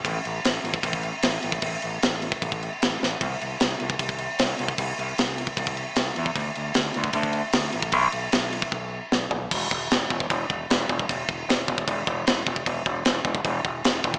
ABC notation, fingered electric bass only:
X:1
M:4/4
L:1/8
Q:1/4=152
K:Dmix
V:1 name="Fingered electric bass" clef=bass
A,,, A,,, A,,, A,,, A,,,2 A,,, A,,, | A,,, A,,, A,,,2 A,,,2 A,,, A,,, | C,, C,, C,, C,, C,,2 C,, C,, | C,, C,, C,,2 C,,2 C,, E,, |
D,, D,, D,, D,, D,,2 D,, A,,, | B,,, B,,, B,,,2 B,,,2 B,,, B,,, | [K:C] E,,, E,,, E,,, E,,, E,,, E,,, E,,, E,,, | E,,, E,,, E,,, E,,, E,,, E,,, E,,, E,,, |
E,,, E,,, E,,, E,,, E,,, E,,, E,,, E,,, |]